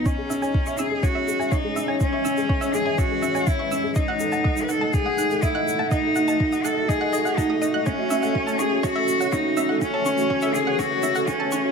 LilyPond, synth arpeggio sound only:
\new Staff \with { instrumentName = "Synth arpeggio sound" } { \time 4/4 \key cis \minor \tempo 4 = 123 cis''16 r16 e''16 gis''16 r16 cis'''16 e'''16 r16 cis''16 e''16 r16 gis''16 cis''16 r16 e''16 gis''16 | r16 cis'''16 e'''16 r16 cis''16 e''16 r16 gis''16 cis''16 r16 e''16 gis''16 r16 cis'''16 e'''16 r16 | dis''16 fis''16 r16 a''16 dis''16 r16 fis''16 a''16 r16 dis'''16 fis'''16 r16 dis''16 fis''16 r16 a''16 | dis''16 r16 fis''16 a''16 r16 dis'''16 fis'''16 r16 dis''16 fis''16 dis''16 fis''16 a''16 dis'''16 dis''16 fis'''16 |
cis''16 r16 e''16 fis''16 r16 a''16 cis'''16 r16 cis''16 e''16 r16 fis''16 cis''16 r16 e''16 fis''16 | r16 a''16 cis'''16 r16 cis''16 e''16 r16 fis''16 cis''16 r16 e''16 fis''16 r16 a''16 cis'''16 r16 | }